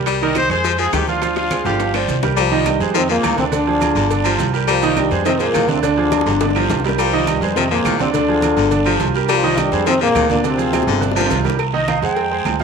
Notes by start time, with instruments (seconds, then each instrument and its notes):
Already playing: upright bass C2, grand piano G3 G4 A#4
0.06 baritone saxophone G3, high bongo, high conga, high timbale, long guiro, claves, maracas
0.21 grand piano D#3 D#4 D#5, horn section G4 A#4, high bongo, high conga, maracas
0.35 grand piano D#3 D#4 D#5, horn section G4 C5, high bongo, high conga, high timbale, short guiro, claves, maracas
0.49 upright bass F2, grand piano G#3 G#4 C5, horn section G#4 C5, high bongo, high conga, high timbale, short guiro, maracas
0.64 baritone saxophone F3, high bongo, high conga, long guiro, maracas
0.78 baritone saxophone F3, grand piano G#3 G#4 C5, horn section F4 G#4, high conga, maracas
0.92 upright bass D2, baritone saxophone D#3, horn section D#4 G4, high bongo, low bongo, high conga, high timbale, low timbale, short guiro, claves, maracas
1.07 grand piano F3 F4 F5, horn section D4 F4, high bongo, high conga, short guiro, maracas
1.22 grand piano F3 F4 F5, high bongo, high timbale, long guiro, maracas
1.36 horn section D4 F4, high bongo, high conga, high timbale, maracas
1.51 grand piano G#3 G#4 C5, high conga, high timbale, short guiro, claves, maracas
1.64 upright bass G1, baritone saxophone D3, grand piano F3 F4 F5, horn section D4 G4, low bongo, high conga, short guiro, maracas
1.79 low bongo, high conga, high timbale, long guiro, maracas
1.94 baritone saxophone F3, grand piano C4 C5 D5, low bongo, high conga, high timbale, claves, maracas
2.08 upright bass C2, high conga, low timbale, short guiro, maracas
2.23 grand piano G3 G4 A#4, low bongo, high conga, high timbale, short guiro, maracas
2.36 trombone section F3 F4, baritone saxophone G3, cowbell, high conga, low agogo, long guiro, claves, maracas
2.52 grand piano D#3 D#4 D#5
2.66 trombone section G2 G3, cowbell, high conga, low timbale, low agogo, short guiro, claves, maracas
2.80 upright bass F2, grand piano G#3 G#4 C5, cowbell, short guiro, maracas
2.94 trombone section C3 C4, grand piano D#3 D#4 D#5, baritone saxophone F3, cowbell, high conga, low agogo, long guiro, maracas
3.09 trombone section A#2 A#3, baritone saxophone F3, grand piano G#3 G#4 C5, high conga
3.23 upright bass D2, baritone saxophone D#3, cowbell, high conga, low timbale, low agogo, short guiro, claves, maracas
3.38 trombone section C3 C4, grand piano D3 D4 D5, cowbell, high conga, short guiro, maracas
3.52 grand piano D3 D4 D5, trombone section D3 D4, cowbell, high conga, low agogo, long guiro, maracas
3.67 grand piano F3 F4 G#4, high conga
3.81 grand piano F3 F4 G#4, cowbell, high conga, low timbale, low agogo, short guiro, claves, maracas
3.95 upright bass G1, baritone saxophone D3, cowbell, low agogo, short guiro, maracas
4.10 grand piano D3 D4 D5, cowbell, high conga, long guiro, maracas
4.24 baritone saxophone F3, grand piano F3 F4 G4, high conga, low agogo, claves, maracas
4.38 upright bass C2, cowbell, high conga, low timbale, low agogo, short guiro, maracas
4.53 grand piano G3 G4 A#4, short guiro, maracas
4.67 trombone section F3 F4, baritone saxophone G3, cowbell, high conga, low agogo, long guiro, claves, maracas
4.83 grand piano D#3 D#4 D#5, maracas
4.97 trombone section G2 G3, cowbell, high conga, low timbale, low agogo, short guiro, claves, maracas
5.11 upright bass F2, grand piano G#3 G#4 C5, cowbell, short guiro, maracas
5.25 trombone section C3 C4, grand piano D#3 D#4 D#5, baritone saxophone F3, cowbell, high conga, low agogo, long guiro, maracas
5.39 trombone section A#2 A#3, baritone saxophone F3, grand piano G#3 G#4 C5, high conga, maracas
5.53 upright bass D2, baritone saxophone D#3, cowbell, high conga, low timbale, low agogo, short guiro, claves, maracas
5.68 trombone section C3 C4, grand piano D3 D4 D5, cowbell, high conga, short guiro, maracas
5.83 grand piano D3 D4 D5, trombone section D3 D4, cowbell, low agogo, long guiro, maracas
5.97 grand piano F3 F4 G#4, high conga
6.12 grand piano F3 F4 G#4, cowbell, high bongo, high conga, low timbale, low agogo, short guiro, claves, maracas
6.21 high bongo
6.26 upright bass G1, baritone saxophone D3, cowbell, high conga, high timbale, low agogo, short guiro, maracas
6.31 high bongo
6.41 grand piano D3 D4 D5, cowbell, high bongo, high conga, high timbale, long guiro, maracas
6.50 low bongo
6.55 baritone saxophone F3, grand piano F3 F4 G4, high conga, low timbale, low agogo, claves
6.69 upright bass C2, cowbell, low bongo, high conga, low timbale, low agogo, short guiro, maracas
6.80 low bongo
6.84 grand piano G3 G4 A#4, low timbale, short guiro, maracas
6.89 low bongo
6.98 trombone section F3 F4, baritone saxophone G3, cowbell, high conga, low agogo, long guiro, claves, maracas
7.13 grand piano D#3 D#4 D#5, high conga
7.27 trombone section G2 G3, cowbell, high conga, low timbale, low agogo, short guiro, claves, maracas
7.41 upright bass F2, grand piano G#3 G#4 C5, cowbell, short guiro, maracas
7.56 trombone section C3 C4, grand piano D#3 D#4 D#5, baritone saxophone F3, cowbell, high conga, low agogo, long guiro, maracas
7.71 trombone section A#2 A#3, baritone saxophone F3, grand piano G#3 G#4 C5, high conga
7.85 upright bass D2, baritone saxophone D#3, cowbell, high conga, low timbale, low agogo, short guiro, claves, maracas
7.99 trombone section C3 C4, grand piano D3 D4 D5, cowbell, high conga, short guiro, maracas
8.14 grand piano D3 D4 D5, trombone section D3 D4, cowbell, high conga, low agogo, long guiro, maracas
8.28 grand piano F3 F4 G#4, high conga
8.42 grand piano F3 F4 G#4, cowbell, high conga, low timbale, low agogo, short guiro, claves, maracas
8.56 upright bass G1, baritone saxophone D3, cowbell, low agogo, short guiro, maracas
8.71 grand piano D3 D4 D5, cowbell, long guiro, maracas
8.85 baritone saxophone F3, grand piano F3 F4 G4, high conga, low agogo, claves
8.99 upright bass C2, cowbell, high conga, low timbale, low agogo, short guiro, maracas
9.14 grand piano G3 G4 A#4, short guiro, maracas
9.29 trombone section F3 F4, baritone saxophone G3, cowbell, high conga, low agogo, long guiro, claves, maracas
9.43 grand piano D#3 D#4 D#5, high conga
9.57 trombone section G2 G3, cowbell, high conga, low timbale, low agogo, short guiro, claves, maracas
9.72 upright bass F2, grand piano G#3 G#4 C5, cowbell, short guiro, maracas
9.86 trombone section C3 C4, grand piano D#3 D#4 D#5, baritone saxophone F3, cowbell, high conga, low agogo, long guiro, maracas
10.01 trombone section A#2 A#3, baritone saxophone F3, grand piano G#3 G#4 C5, high conga
10.15 upright bass D2, baritone saxophone D#3, cowbell, high conga, low timbale, low agogo, short guiro, claves, maracas
10.29 trombone section A#2 A#3, grand piano D3 D4 D5, cowbell, high conga, short guiro, maracas
10.44 trombone section C3 C4, grand piano D3 D4 D5, cowbell, high conga, low agogo, long guiro, maracas
10.58 grand piano F3 F4 G#4, high conga, maracas
10.73 grand piano F3 F4 G#4, cowbell, high bongo, high conga, low timbale, low agogo, short guiro, claves, maracas
10.83 high bongo
10.87 upright bass G1, baritone saxophone D3, cowbell, high conga, low agogo, short guiro, maracas
10.93 high bongo
11.01 grand piano D3 D4 D5, cowbell, high conga, long guiro, maracas
11.11 high bongo
11.16 baritone saxophone F3, grand piano F3 F4 G4, high conga, high timbale, low agogo, claves, maracas
11.21 low bongo
11.26 high timbale
11.30 upright bass C2, cowbell, low bongo, high conga, low agogo, short guiro, maracas
11.35 low timbale
11.44 grand piano G3 G4 A#4, high conga, low timbale, short guiro, maracas
11.50 low bongo
11.59 cowbell, low agogo, long guiro, claves
11.73 grand piano D#3 D#4 D#5, flute D#5, high conga
11.88 grand piano D#3 D#4 D#5, flute F5, cowbell, high conga, low timbale, low agogo, short guiro, claves
12.02 upright bass F2, grand piano G#3 G#4 C5, flute G5, cowbell, short guiro
12.17 cowbell, high conga, low agogo, long guiro
12.31 grand piano G#3 G#4 C5, high conga
12.45 upright bass D2, cowbell, high conga, low timbale, low agogo, short guiro, claves
12.59 grand piano F3 F4 F5, flute D#5, cowbell, high conga, short guiro